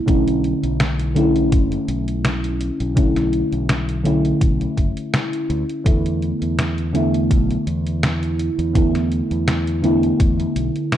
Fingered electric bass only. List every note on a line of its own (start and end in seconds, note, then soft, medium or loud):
0.08 0.53 B1 loud
0.63 1.52 B1 medium
1.52 1.77 F#1 medium
1.88 2.69 B1 medium
2.80 3.42 B1 medium
3.52 4.32 B1 medium
4.41 4.66 B1 medium
4.77 4.90 F#1 medium
5.50 5.63 D2 medium
5.86 6.31 E2 loud
6.42 7.32 E2 medium
7.31 7.55 B1 medium
7.67 8.48 E2 medium
8.59 9.20 E2 medium
9.31 10.11 E2 medium
10.20 10.45 E2 medium
10.56 10.69 B1 medium